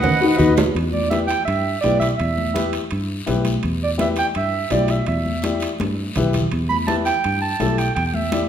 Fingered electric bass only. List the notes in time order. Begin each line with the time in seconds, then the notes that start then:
0.04 D#2
0.40 D#2
0.75 E2
1.48 G2
1.84 B1
2.20 E2
2.92 G2
3.29 B1
3.64 E2
4.36 G2
4.72 B1
5.08 E2
5.81 G2
6.17 B1
6.53 E2
7.25 G2
7.61 B1
7.97 E2